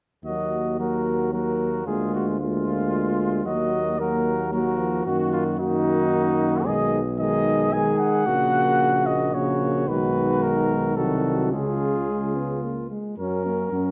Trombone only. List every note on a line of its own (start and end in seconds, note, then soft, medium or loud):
0.25 0.76 F#3 soft
0.79 1.32 F#3 soft
1.33 1.85 F#3 soft
1.86 2.39 G#3 soft
2.41 3.47 G#3 soft
3.46 3.99 F#3 soft
3.99 4.51 F#3 soft
4.52 4.81 F#3 soft
4.79 5.08 F3 soft
5.06 5.59 D#3 soft
5.59 6.63 D#3 soft
6.66 7.00 D#3 soft
7.20 7.69 D#3 medium
7.74 8.26 D#3 medium
8.26 9.32 C#3 medium
9.34 9.89 C#3 medium
9.88 10.96 D#3 soft
10.96 11.54 D#3 soft
11.52 12.90 C#3 soft
13.18 13.44 F#3 soft
13.45 13.72 F#3 soft
13.72 13.91 F#3 soft